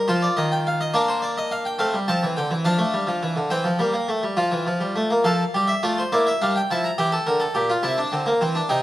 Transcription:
0.08 F3 F4 C5
0.22 D5
0.37 D#3 D#5
0.52 G5
0.67 F5
0.81 D#5
0.94 A#3 D4 D5
1.08 C5
1.22 D5
1.38 D#5
1.51 F5
1.65 G5
1.79 A3 C4 F5
1.94 G3
2.08 F3 C4 A5
2.23 E3
2.37 D3 G5
2.51 E3
2.65 F3 D4 F5
2.78 A3
2.94 G3
3.07 F3
3.23 E3
3.36 D3
3.50 E3 C4 G5
3.64 F3
3.79 G3 A#3
3.94 A#3
4.08 A3
4.23 G3
4.37 F3 F4
4.52 E3
4.67 F3
4.80 G3
4.96 A3
5.10 A#3
5.24 F3 A4 F5
5.54 G3 G4
5.67 E5
5.83 A3 F4 D5
5.98 C5
6.12 A#3 E4 D5
6.27 E5
6.42 G3 D4 F5
6.56 G5
6.71 F3 E4 A5
6.84 A#5
6.98 E3 G4 G5
7.12 A4
7.27 D3 A#4
7.40 A4
7.54 A#2 G4
7.70 F4
7.83 C3 E4 A5
7.98 D4
8.12 D3 C4
8.26 A#3
8.41 E3 C4
8.55 D4
8.69 C3 D#4 G5

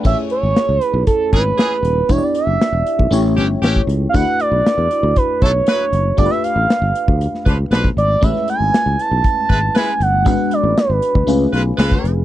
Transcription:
0.03 A1 A3 C#4 E4 G#4 C#5 E5, kick, crash
0.30 C#5, closed hi-hat
0.43 G#1
0.56 snare, closed hi-hat
0.69 C#2
0.81 B4, closed hi-hat
0.94 B1
1.07 A4, kick, closed hi-hat
1.32 G#1 E3 C#4 G#4 B4, kick, closed hi-hat
1.58 E3 C#4 G#4, snare, closed hi-hat
1.83 D#1, closed hi-hat
2.09 E1 B3 D4 E4 G4 C#5, kick, closed hi-hat
2.18 D5
2.23 D5
2.35 E5, closed hi-hat
2.47 F#1
2.61 snare, closed hi-hat
2.72 E1
2.87 closed hi-hat
2.99 B1, kick
3.11 A1 A3 C#4 E4 G4 C#5, closed hi-hat
3.36 G1 E3 C#4 G4, closed hi-hat
3.62 A1 E3 C#4 G4, snare, closed hi-hat
3.76 kick
3.87 C#2, closed hi-hat
4.09 F5
4.13 D2 A3 D4 E4 F#4 B4 F#5, kick, closed hi-hat
4.40 D5, closed hi-hat
4.51 B1
4.66 snare, closed hi-hat
4.78 E2
4.91 closed hi-hat
5.03 D2
5.16 B4, kick, closed hi-hat
5.42 B1 F#3 E4 A4 C#5, kick, closed hi-hat
5.67 F#3 E4 B4, snare, closed hi-hat
5.93 F#1, closed hi-hat
6.17 G1 A3 D4 F4 G4 A4 D5, kick, closed hi-hat
6.26 B4
6.31 E5, snare
6.43 F5, closed hi-hat
6.56 A1
6.70 snare, closed hi-hat
6.82 G1
6.95 closed hi-hat
7.08 D2, kick
7.21 closed hi-hat
7.35 snare
7.46 C#2 F3 D4 B4, kick, closed hi-hat
7.71 B1 F3 D4 B4, snare, closed hi-hat
7.84 kick
7.97 G#1 D5, closed hi-hat
8.21 A1 G#3 A3 C#4 E4 B4 E5, kick, closed hi-hat
8.36 snare
8.48 G#5, closed hi-hat
8.60 G#1
8.74 snare, closed hi-hat
8.86 C#2
8.99 A5, closed hi-hat
9.11 B1
9.24 kick, closed hi-hat
9.49 G#1 G#3 E4 B4, kick, closed hi-hat
9.75 G#3 E4 B4 G#5, snare, closed hi-hat
10.00 G1 F#5, closed hi-hat
10.25 G#1 G#3 B3 D4 F#4 B4, kick, closed hi-hat
10.51 D5, closed hi-hat
10.63 A1
10.78 B4, snare, closed hi-hat
10.90 G#1
11.02 closed hi-hat
11.15 D2, kick
11.27 C#2 A3 C#4 F4 G#4 B4, closed hi-hat
11.53 B1 G#3 F4 B4, closed hi-hat
11.77 C#2 G#3 F4 B4, snare, closed hi-hat
11.92 kick
12.04 F1, closed hi-hat

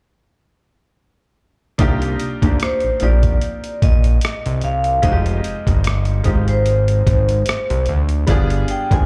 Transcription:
1.78 C2 A#3 D4 D#4 F4 G4, kick, closed hi-hat
2.02 closed hi-hat
2.20 closed hi-hat
2.42 D2 A#3 D4 D#4 F4 G4, kick, closed hi-hat
2.60 C5, cross-stick, closed hi-hat
2.80 A#1, closed hi-hat
3.00 A#1 A#3 C4 D#4 F4 G4 D5, closed hi-hat
3.23 kick, closed hi-hat
3.41 closed hi-hat
3.64 closed hi-hat
3.82 A#1 D#5, kick, closed hi-hat
4.04 closed hi-hat
4.21 cross-stick, closed hi-hat
4.46 C2, closed hi-hat
4.61 C2 F5, closed hi-hat
4.84 closed hi-hat
5.02 F1 G#3 C4 D#4 F4 F#4 D#5, kick, closed hi-hat
5.12 G4
5.26 closed hi-hat
5.44 closed hi-hat
5.67 G1, kick, closed hi-hat
5.84 cross-stick, closed hi-hat
6.05 closed hi-hat
6.24 G#1 G#3 C4 D#4 F4 G4, kick, closed hi-hat
6.48 C5, closed hi-hat
6.66 closed hi-hat
6.88 closed hi-hat
7.07 G#1, kick, closed hi-hat
7.29 closed hi-hat
7.46 cross-stick, closed hi-hat
7.70 C2, closed hi-hat
7.86 D2, closed hi-hat
8.09 closed hi-hat
8.27 G1 G3 B3 D4 F4 G#4, kick, closed hi-hat
8.50 closed hi-hat
8.68 G5, closed hi-hat
8.90 G#1 G3 B3 D4 F4 G#4 G#5, kick, closed hi-hat

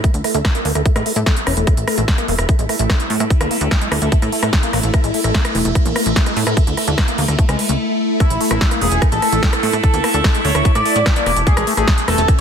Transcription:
Already playing: E4 A4 E5
0.04 A3, kick, closed hi-hat
0.14 D2, closed hi-hat
0.24 A3, cross-stick, open hi-hat
0.34 D2 A3, closed hi-hat
0.45 kick, cross-stick, snare, closed hi-hat
0.55 A#3, closed hi-hat
0.65 D2 A#3, open hi-hat
0.75 D2 A3, cross-stick, closed hi-hat
0.86 A3, kick, closed hi-hat
0.96 A2 G#3, cross-stick, closed hi-hat
1.06 A3, open hi-hat
1.16 A2 A3, closed hi-hat
1.26 A3, kick, cross-stick, snare, closed hi-hat
1.37 closed hi-hat
1.47 E1 C#4, cross-stick, open hi-hat
1.57 E1 A3, closed hi-hat
1.67 A3 E4, kick, cross-stick, closed hi-hat
1.77 A1, closed hi-hat
1.88 A3, cross-stick, open hi-hat
1.98 A1 A3, closed hi-hat
2.08 kick, snare, closed hi-hat
2.18 A#3, cross-stick, closed hi-hat
2.28 E1 A#3, open hi-hat
2.39 E1, cross-stick, closed hi-hat
2.49 A3, kick, closed hi-hat
2.59 A1 G#3, closed hi-hat
2.69 A3, cross-stick, open hi-hat
2.79 A1 A3, closed hi-hat
2.90 A3, kick, cross-stick, snare, closed hi-hat
3.00 closed hi-hat
3.10 A2 A3, open hi-hat
3.20 A2 A3, cross-stick, closed hi-hat
3.30 kick, closed hi-hat
3.41 D2 A#3, cross-stick, closed hi-hat
3.51 A#3, open hi-hat
3.61 D2, closed hi-hat
3.71 A3, kick, cross-stick, snare, closed hi-hat
3.81 G#3, closed hi-hat
3.92 D2 A3, cross-stick, open hi-hat
4.02 D2 A3, closed hi-hat
4.12 A3, kick, closed hi-hat
4.22 A2, cross-stick, closed hi-hat
4.32 A3, open hi-hat
4.43 A2 A3, cross-stick, closed hi-hat
4.53 kick, snare, closed hi-hat
4.63 A#3, closed hi-hat
4.73 A1 A#3, cross-stick, open hi-hat
4.83 A1, closed hi-hat
4.94 A3, kick, cross-stick, closed hi-hat
5.04 A1 G#3, closed hi-hat
5.14 A3, open hi-hat
5.24 A1 A3, cross-stick, closed hi-hat
5.34 A3, kick, snare, closed hi-hat
5.45 cross-stick, closed hi-hat
5.55 E1 A3, open hi-hat
5.65 E1 A3, closed hi-hat
5.75 kick, cross-stick, closed hi-hat
5.86 A1 A#3, closed hi-hat
5.96 A#3, cross-stick, open hi-hat
6.06 A1, closed hi-hat
6.16 A3, kick, snare, closed hi-hat
6.26 G#3, cross-stick, closed hi-hat
6.37 A2 A3, open hi-hat
6.47 A2 A3, cross-stick, closed hi-hat
6.57 A3, kick, closed hi-hat
6.67 D2, closed hi-hat
6.77 A3, cross-stick, open hi-hat
6.88 D2 A3, closed hi-hat
6.98 kick, cross-stick, snare, closed hi-hat
7.08 A#3, closed hi-hat
7.18 D2 A#3, open hi-hat
7.28 D2, cross-stick, closed hi-hat
7.39 A3, kick, closed hi-hat
7.49 C#2 G#3, cross-stick, closed hi-hat
7.59 open hi-hat
7.69 C#2 A#3, closed hi-hat
8.20 A3 E4, kick, cross-stick, closed hi-hat
8.30 A1, closed hi-hat
8.41 A3, open hi-hat
8.51 A1 A3 E4, cross-stick, closed hi-hat
8.61 kick, snare, closed hi-hat
8.71 A#3, cross-stick, closed hi-hat
8.81 E1 A#3 G#4, open hi-hat
8.92 E1, closed hi-hat
9.02 A3, kick, cross-stick, closed hi-hat
9.12 A1 G#3 A4, closed hi-hat
9.22 A3, cross-stick, open hi-hat
9.32 A1 A3, closed hi-hat
9.43 kick, snare, closed hi-hat
9.53 A4, cross-stick, closed hi-hat
9.63 A2 A3, open hi-hat
9.73 A2 A3, cross-stick, closed hi-hat
9.83 A4, kick, closed hi-hat
9.94 D2 A#3, closed hi-hat
10.04 A#3, cross-stick, open hi-hat
10.14 D2 A4, closed hi-hat
10.24 A3, kick, cross-stick, snare, closed hi-hat
10.35 G#3, closed hi-hat
10.45 D2 A3 C#5, open hi-hat
10.55 D2 A3, cross-stick, closed hi-hat
10.65 A3, kick, closed hi-hat
10.75 A2 D5, cross-stick, closed hi-hat
10.86 A3, open hi-hat
10.96 A2 A3, closed hi-hat
11.06 kick, cross-stick, snare, closed hi-hat
11.16 A#3 D5, closed hi-hat
11.26 E1 A#3, cross-stick, open hi-hat
11.37 E1, closed hi-hat
11.47 A3 C#4 G#4, kick, closed hi-hat
11.57 A1 G#3, cross-stick, closed hi-hat
11.67 A3, open hi-hat
11.77 A1 A3 G#4, cross-stick, closed hi-hat
11.88 kick, snare, closed hi-hat
11.98 closed hi-hat
12.08 E1 A3 A4, cross-stick, open hi-hat
12.18 E1 A3, closed hi-hat
12.28 kick, cross-stick, closed hi-hat

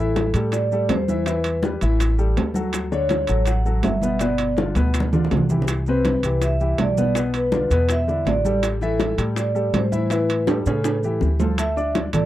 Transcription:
Already playing: A1 E3 E4 A4 E5
0.16 high bongo, high conga, high timbale, low timbale, maracas
0.34 A2 G3 G4 A4, high bongo, high conga, high timbale, maracas
0.52 D5, high bongo, high conga, high timbale, maracas
0.71 G3 G4 A4, high conga, maracas
0.89 E2 C5, high bongo, low bongo, high conga, high timbale, low timbale, maracas
1.08 E3 E4 E5, high bongo, high conga, maracas
1.26 E3 E4 B4 E5, high bongo, high conga, high timbale, maracas
1.44 high bongo, high conga, high timbale, maracas
1.63 G3 G4 B4, high bongo, high conga, low timbale, maracas
1.81 A1 E3 E4 E5, high bongo, high timbale, maracas
2.00 high bongo, high conga, high timbale, maracas
2.18 G3 G4 A4, high conga, maracas
2.36 D2, high bongo, low bongo, high conga, high timbale, low timbale, maracas
2.54 F#3 F#4 A4, high bongo, high conga, maracas
2.73 high bongo, high conga, high timbale, maracas
2.92 D3 D4 C#5, high bongo, high conga, maracas
3.09 high bongo, high conga, high timbale, low timbale, maracas
3.27 A1 F#3 F#4 A4, high bongo, high conga, high timbale, maracas
3.46 F#5, high bongo, high conga, high timbale, maracas
3.66 F#3 F#4 A4, high conga, maracas
3.83 G1 E5, high bongo, low bongo, high conga, high timbale, low timbale, maracas
4.02 B2 B3 B4, high bongo, high conga, maracas
4.19 B2 B3 B4 D5, high bongo, high conga, high timbale, maracas
4.38 high bongo, high conga, high timbale, maracas
4.57 D3 D4 F4, high bongo, high conga, low timbale, maracas
4.75 D2 B2 B3 B4, high bongo, high conga, high timbale, maracas
4.94 high bongo, high timbale, maracas
5.00 high conga
5.13 D3 D4 F4, low conga, maracas
5.25 low conga
5.31 C2, high bongo, low bongo, high timbale, low timbale, maracas
5.37 low conga
5.49 E3 E4 G4, high bongo, low conga, maracas
5.62 low conga
5.68 high bongo, high conga, high timbale, maracas
5.86 C3 C4 B4, high bongo, high conga, maracas
6.05 high bongo, high conga, high timbale, low timbale, maracas
6.23 C2 E3 E4 G4, high bongo, high conga, high timbale, maracas
6.42 E5, high bongo, high conga, high timbale, maracas
6.60 E3 E4 G4, high conga, maracas
6.78 B1 D5, high bongo, low bongo, high conga, high timbale, low timbale, maracas
6.97 B2 B3 B4, high bongo, high conga, maracas
7.15 B2 B3 B4, high bongo, high timbale, maracas
7.34 B4, high bongo, high conga, high timbale, maracas
7.52 D3 D4 F4, high bongo, high conga, low timbale, maracas
7.71 E2 B2 B3 B4, high bongo, high timbale, maracas
7.89 E5, high bongo, high conga, high timbale, maracas
8.07 D3 D4 E4, high conga, maracas
8.25 A1 D5, high bongo, low bongo, high conga, high timbale, low timbale, maracas
8.45 G3 G4 A4, high bongo, high conga, maracas
8.63 high bongo, high timbale, maracas
8.81 E3 E4 A4 E5, high bongo, high conga, maracas
8.99 high bongo, high conga, high timbale, low timbale, maracas
9.18 A2 G3 G4 A4, high bongo, high conga, high timbale, maracas
9.36 D5, high bongo, high conga, high timbale, maracas
9.55 G3 G4 A4, high conga, maracas
9.74 A2 C5, high bongo, low bongo, high conga, high timbale, low timbale, maracas
9.92 E3 E4 E5, high bongo, high conga, maracas
10.10 E3 E4 B4 E5, high bongo, high conga, high timbale, maracas
10.29 high bongo, high conga, high timbale, maracas
10.47 G3 G4 A4, high bongo, high conga, high timbale, maracas
10.66 A2 C#3 C#4 A4 C#5, high bongo, high timbale, maracas
10.84 high bongo, high conga, high timbale, maracas
11.03 E3 E4 G4, high conga, maracas
11.21 D2, high bongo, low bongo, high conga, maracas
11.39 F3 F4 A4, high bongo, high conga, low timbale, maracas
11.58 A3 A4 E5 A5, high bongo, high conga, high timbale, maracas
11.77 D4 D5 D6, high bongo, high conga, maracas
11.95 high bongo, high conga, high timbale, low timbale, maracas
12.13 A1 A3 A4 D5 A5, high bongo, high conga, low conga, high timbale, maracas

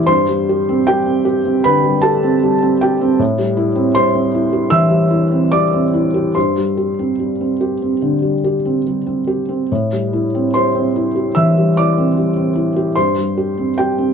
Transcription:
Already playing: E3 A3 C4 G4 D5 E5 E6
0.07 G2 C5 C6
0.28 G3
0.49 G4
0.69 C4
0.87 G3 G4 G5
1.06 C4
1.25 G4
1.45 C4
1.64 D3 B4 B5
1.84 G3
2.02 G4 A4 A5
2.23 C4
2.43 G3
2.62 C4
2.81 G4 G5
3.01 C4
3.19 A2
3.38 G3
3.57 E4
3.76 C4
3.95 G3 C5 C6
4.15 C4
4.34 E4
4.53 G4
4.70 E3 E5 E6
4.91 G3
5.11 E4
5.32 C4
5.52 G3 D5 D6
5.73 C4
5.94 E4
6.14 G4
6.35 G2 C5 C6
6.58 G3
6.77 G4
6.99 C4
7.20 G3
7.41 C4
7.61 G4
7.82 C4
8.02 D3
8.22 G3
8.44 G4
8.65 C4
8.87 G3
9.07 C4
9.27 G4
9.49 C4
9.72 A2
9.93 G3
10.13 E4
10.35 C4
10.54 G3 C5 C6
10.75 C4
10.96 E4
11.16 G4
11.35 E3 E5 E6
11.57 G3
11.77 E4 D5 D6
11.98 C4
12.17 G3
12.36 C4
12.56 E4
12.76 G4
12.96 G2 C5 C6
13.18 G3
13.38 G4
13.58 C4
13.78 G3 G4 G5
13.98 C4

